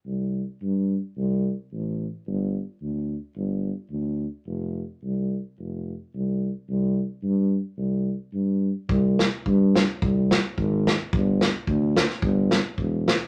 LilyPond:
<<
  \new Staff \with { instrumentName = "Tuba" } { \clef bass \time 2/4 \key c \major \tempo 4 = 109 c,4 g,4 | c,4 a,,4 | g,,4 d,4 | g,,4 d,4 |
f,,4 c,4 | f,,4 c,4 | c,4 g,4 | c,4 g,4 |
c,4 g,4 | c,4 aes,,4 | g,,4 d,4 | g,,4 e,,4 | }
  \new DrumStaff \with { instrumentName = "Drums" } \drummode { \time 2/4 r4 r4 | r4 r4 | r4 r4 | r4 r4 |
r4 r4 | r4 r4 | r4 r4 | r4 r4 |
bd8 sn8 bd8 sn8 | bd8 sn8 bd8 sn8 | bd8 sn8 bd8 sn16 sn16 | bd8 sn8 bd8 sn8 | }
>>